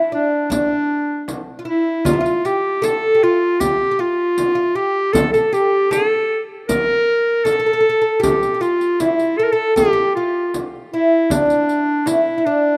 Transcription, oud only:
0, 0, Header, 1, 2, 480
1, 0, Start_track
1, 0, Tempo, 771208
1, 314, Time_signature, 4, 2, 24, 8
1, 7948, End_track
2, 0, Start_track
2, 0, Title_t, "Oud"
2, 0, Program_c, 0, 24
2, 0, Note_on_c, 0, 64, 63
2, 73, Note_off_c, 0, 64, 0
2, 75, Note_on_c, 0, 62, 59
2, 303, Note_off_c, 0, 62, 0
2, 311, Note_on_c, 0, 62, 77
2, 841, Note_off_c, 0, 62, 0
2, 989, Note_on_c, 0, 65, 56
2, 1025, Note_off_c, 0, 65, 0
2, 1028, Note_on_c, 0, 64, 70
2, 1273, Note_off_c, 0, 64, 0
2, 1275, Note_on_c, 0, 65, 73
2, 1321, Note_off_c, 0, 65, 0
2, 1328, Note_on_c, 0, 64, 56
2, 1368, Note_off_c, 0, 64, 0
2, 1372, Note_on_c, 0, 65, 70
2, 1524, Note_off_c, 0, 65, 0
2, 1527, Note_on_c, 0, 67, 73
2, 1746, Note_off_c, 0, 67, 0
2, 1755, Note_on_c, 0, 69, 84
2, 1955, Note_off_c, 0, 69, 0
2, 1958, Note_on_c, 0, 67, 57
2, 2000, Note_off_c, 0, 67, 0
2, 2013, Note_on_c, 0, 65, 79
2, 2239, Note_off_c, 0, 65, 0
2, 2242, Note_on_c, 0, 67, 74
2, 2428, Note_off_c, 0, 67, 0
2, 2436, Note_on_c, 0, 67, 58
2, 2480, Note_off_c, 0, 67, 0
2, 2483, Note_on_c, 0, 65, 75
2, 2825, Note_off_c, 0, 65, 0
2, 2832, Note_on_c, 0, 65, 68
2, 2956, Note_off_c, 0, 65, 0
2, 2959, Note_on_c, 0, 67, 71
2, 3193, Note_off_c, 0, 67, 0
2, 3195, Note_on_c, 0, 69, 88
2, 3315, Note_off_c, 0, 69, 0
2, 3323, Note_on_c, 0, 69, 80
2, 3437, Note_off_c, 0, 69, 0
2, 3439, Note_on_c, 0, 67, 76
2, 3676, Note_off_c, 0, 67, 0
2, 3678, Note_on_c, 0, 69, 81
2, 3970, Note_off_c, 0, 69, 0
2, 4163, Note_on_c, 0, 70, 92
2, 4634, Note_off_c, 0, 70, 0
2, 4637, Note_on_c, 0, 69, 83
2, 4674, Note_off_c, 0, 69, 0
2, 4682, Note_on_c, 0, 69, 62
2, 4720, Note_off_c, 0, 69, 0
2, 4727, Note_on_c, 0, 69, 69
2, 4762, Note_off_c, 0, 69, 0
2, 4770, Note_on_c, 0, 69, 56
2, 4805, Note_off_c, 0, 69, 0
2, 4813, Note_on_c, 0, 69, 73
2, 4850, Note_off_c, 0, 69, 0
2, 4857, Note_on_c, 0, 69, 58
2, 4906, Note_off_c, 0, 69, 0
2, 4913, Note_on_c, 0, 69, 68
2, 4966, Note_off_c, 0, 69, 0
2, 4988, Note_on_c, 0, 69, 71
2, 5099, Note_off_c, 0, 69, 0
2, 5102, Note_on_c, 0, 67, 79
2, 5309, Note_off_c, 0, 67, 0
2, 5317, Note_on_c, 0, 67, 51
2, 5355, Note_off_c, 0, 67, 0
2, 5358, Note_on_c, 0, 65, 72
2, 5603, Note_on_c, 0, 64, 76
2, 5606, Note_off_c, 0, 65, 0
2, 5847, Note_on_c, 0, 69, 75
2, 5848, Note_off_c, 0, 64, 0
2, 5921, Note_off_c, 0, 69, 0
2, 5929, Note_on_c, 0, 69, 74
2, 6072, Note_off_c, 0, 69, 0
2, 6075, Note_on_c, 0, 67, 81
2, 6122, Note_off_c, 0, 67, 0
2, 6130, Note_on_c, 0, 65, 66
2, 6170, Note_off_c, 0, 65, 0
2, 6180, Note_on_c, 0, 67, 74
2, 6326, Note_off_c, 0, 67, 0
2, 6329, Note_on_c, 0, 65, 69
2, 6613, Note_off_c, 0, 65, 0
2, 6806, Note_on_c, 0, 64, 70
2, 7039, Note_off_c, 0, 64, 0
2, 7041, Note_on_c, 0, 62, 67
2, 7491, Note_off_c, 0, 62, 0
2, 7513, Note_on_c, 0, 64, 74
2, 7697, Note_off_c, 0, 64, 0
2, 7704, Note_on_c, 0, 64, 53
2, 7749, Note_off_c, 0, 64, 0
2, 7758, Note_on_c, 0, 62, 70
2, 7948, Note_off_c, 0, 62, 0
2, 7948, End_track
0, 0, End_of_file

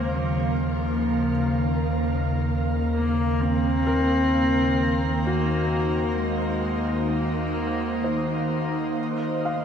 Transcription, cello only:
0, 0, Header, 1, 2, 480
1, 0, Start_track
1, 0, Tempo, 924499
1, 329, Time_signature, 3, 2, 24, 8
1, 3684, Tempo, 941915
1, 4984, End_track
2, 0, Start_track
2, 0, Title_t, "Cello"
2, 0, Program_c, 0, 42
2, 0, Note_on_c, 0, 56, 81
2, 76, Note_on_c, 0, 54, 81
2, 84, Note_off_c, 0, 56, 0
2, 325, Note_on_c, 0, 53, 85
2, 333, Note_off_c, 0, 54, 0
2, 1052, Note_off_c, 0, 53, 0
2, 1531, Note_on_c, 0, 58, 93
2, 1771, Note_on_c, 0, 60, 125
2, 1778, Note_off_c, 0, 58, 0
2, 2728, Note_on_c, 0, 58, 92
2, 2736, Note_off_c, 0, 60, 0
2, 3199, Note_on_c, 0, 56, 94
2, 3207, Note_off_c, 0, 58, 0
2, 3682, Note_on_c, 0, 58, 84
2, 3689, Note_off_c, 0, 56, 0
2, 4403, Note_off_c, 0, 58, 0
2, 4984, End_track
0, 0, End_of_file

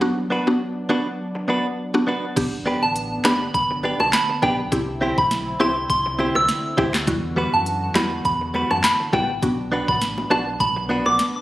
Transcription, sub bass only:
0, 0, Header, 1, 2, 480
1, 0, Start_track
1, 0, Tempo, 588235
1, 13, Time_signature, 4, 2, 24, 8
1, 9315, End_track
2, 0, Start_track
2, 0, Title_t, "Sub bass"
2, 0, Program_c, 0, 38
2, 1933, Note_on_c, 0, 31, 112
2, 2254, Note_off_c, 0, 31, 0
2, 2306, Note_on_c, 0, 33, 94
2, 2603, Note_off_c, 0, 33, 0
2, 2652, Note_on_c, 0, 31, 89
2, 2858, Note_off_c, 0, 31, 0
2, 2891, Note_on_c, 0, 31, 109
2, 3213, Note_off_c, 0, 31, 0
2, 3267, Note_on_c, 0, 35, 95
2, 3357, Note_off_c, 0, 35, 0
2, 3613, Note_on_c, 0, 35, 92
2, 3819, Note_off_c, 0, 35, 0
2, 3853, Note_on_c, 0, 36, 114
2, 4174, Note_off_c, 0, 36, 0
2, 4225, Note_on_c, 0, 35, 95
2, 4522, Note_off_c, 0, 35, 0
2, 4572, Note_on_c, 0, 36, 96
2, 4778, Note_off_c, 0, 36, 0
2, 4812, Note_on_c, 0, 36, 110
2, 5133, Note_off_c, 0, 36, 0
2, 5186, Note_on_c, 0, 36, 94
2, 5277, Note_off_c, 0, 36, 0
2, 5533, Note_on_c, 0, 38, 96
2, 5773, Note_on_c, 0, 40, 117
2, 5785, Note_off_c, 0, 38, 0
2, 6094, Note_off_c, 0, 40, 0
2, 6146, Note_on_c, 0, 42, 95
2, 6443, Note_off_c, 0, 42, 0
2, 6492, Note_on_c, 0, 40, 88
2, 6698, Note_off_c, 0, 40, 0
2, 6732, Note_on_c, 0, 40, 108
2, 7053, Note_off_c, 0, 40, 0
2, 7106, Note_on_c, 0, 42, 91
2, 7197, Note_off_c, 0, 42, 0
2, 7452, Note_on_c, 0, 33, 88
2, 7658, Note_off_c, 0, 33, 0
2, 7693, Note_on_c, 0, 35, 107
2, 8014, Note_off_c, 0, 35, 0
2, 8065, Note_on_c, 0, 33, 85
2, 8362, Note_off_c, 0, 33, 0
2, 8412, Note_on_c, 0, 35, 88
2, 8618, Note_off_c, 0, 35, 0
2, 8651, Note_on_c, 0, 35, 118
2, 8973, Note_off_c, 0, 35, 0
2, 9026, Note_on_c, 0, 35, 99
2, 9117, Note_off_c, 0, 35, 0
2, 9315, End_track
0, 0, End_of_file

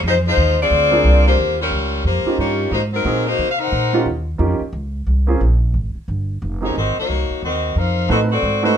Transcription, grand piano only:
0, 0, Header, 1, 2, 480
1, 0, Start_track
1, 0, Tempo, 335946
1, 47, Time_signature, 4, 2, 24, 8
1, 12536, End_track
2, 0, Start_track
2, 0, Title_t, "Grand piano"
2, 0, Program_c, 0, 0
2, 1298, Note_on_c, 0, 58, 69
2, 1303, Note_on_c, 0, 60, 61
2, 1311, Note_on_c, 0, 62, 64
2, 1311, Note_on_c, 0, 65, 61
2, 1316, Note_on_c, 0, 68, 74
2, 1925, Note_off_c, 0, 58, 0
2, 1927, Note_off_c, 0, 60, 0
2, 1931, Note_off_c, 0, 62, 0
2, 1931, Note_off_c, 0, 65, 0
2, 1934, Note_off_c, 0, 68, 0
2, 3229, Note_on_c, 0, 58, 53
2, 3230, Note_on_c, 0, 61, 50
2, 3240, Note_on_c, 0, 63, 48
2, 3245, Note_on_c, 0, 65, 52
2, 3247, Note_on_c, 0, 67, 55
2, 3850, Note_off_c, 0, 58, 0
2, 3851, Note_off_c, 0, 61, 0
2, 3856, Note_off_c, 0, 63, 0
2, 3858, Note_off_c, 0, 65, 0
2, 3859, Note_off_c, 0, 67, 0
2, 4350, Note_on_c, 0, 58, 59
2, 4358, Note_on_c, 0, 63, 49
2, 4359, Note_on_c, 0, 60, 52
2, 4367, Note_on_c, 0, 66, 48
2, 4381, Note_on_c, 0, 68, 66
2, 4626, Note_off_c, 0, 58, 0
2, 4630, Note_off_c, 0, 63, 0
2, 4631, Note_off_c, 0, 60, 0
2, 4635, Note_off_c, 0, 66, 0
2, 4642, Note_off_c, 0, 68, 0
2, 5611, Note_on_c, 0, 58, 63
2, 5618, Note_on_c, 0, 61, 60
2, 5625, Note_on_c, 0, 63, 56
2, 5627, Note_on_c, 0, 65, 61
2, 5636, Note_on_c, 0, 67, 66
2, 5780, Note_off_c, 0, 58, 0
2, 5783, Note_off_c, 0, 61, 0
2, 5787, Note_off_c, 0, 63, 0
2, 5788, Note_off_c, 0, 65, 0
2, 5793, Note_off_c, 0, 67, 0
2, 6262, Note_on_c, 0, 58, 66
2, 6266, Note_on_c, 0, 61, 57
2, 6270, Note_on_c, 0, 63, 56
2, 6280, Note_on_c, 0, 65, 56
2, 6282, Note_on_c, 0, 67, 68
2, 6543, Note_off_c, 0, 58, 0
2, 6544, Note_off_c, 0, 61, 0
2, 6547, Note_off_c, 0, 63, 0
2, 6552, Note_off_c, 0, 65, 0
2, 6553, Note_off_c, 0, 67, 0
2, 7529, Note_on_c, 0, 58, 66
2, 7533, Note_on_c, 0, 60, 54
2, 7539, Note_on_c, 0, 61, 56
2, 7546, Note_on_c, 0, 65, 53
2, 7551, Note_on_c, 0, 68, 69
2, 7699, Note_off_c, 0, 58, 0
2, 7701, Note_off_c, 0, 60, 0
2, 7704, Note_off_c, 0, 61, 0
2, 7708, Note_off_c, 0, 65, 0
2, 7710, Note_off_c, 0, 68, 0
2, 9448, Note_on_c, 0, 58, 56
2, 9454, Note_on_c, 0, 60, 50
2, 9460, Note_on_c, 0, 63, 50
2, 9470, Note_on_c, 0, 66, 49
2, 9472, Note_on_c, 0, 68, 59
2, 9619, Note_off_c, 0, 58, 0
2, 9622, Note_off_c, 0, 60, 0
2, 9625, Note_off_c, 0, 63, 0
2, 9630, Note_off_c, 0, 66, 0
2, 9631, Note_off_c, 0, 68, 0
2, 11552, Note_on_c, 0, 57, 56
2, 11556, Note_on_c, 0, 60, 54
2, 11561, Note_on_c, 0, 63, 53
2, 11568, Note_on_c, 0, 66, 53
2, 11573, Note_on_c, 0, 71, 63
2, 11828, Note_off_c, 0, 57, 0
2, 11830, Note_off_c, 0, 60, 0
2, 11832, Note_off_c, 0, 63, 0
2, 11836, Note_off_c, 0, 66, 0
2, 11838, Note_off_c, 0, 71, 0
2, 12325, Note_on_c, 0, 57, 73
2, 12329, Note_on_c, 0, 60, 66
2, 12331, Note_on_c, 0, 63, 63
2, 12335, Note_on_c, 0, 66, 66
2, 12349, Note_on_c, 0, 71, 73
2, 12497, Note_off_c, 0, 57, 0
2, 12499, Note_off_c, 0, 60, 0
2, 12500, Note_off_c, 0, 63, 0
2, 12502, Note_off_c, 0, 66, 0
2, 12509, Note_off_c, 0, 71, 0
2, 12536, End_track
0, 0, End_of_file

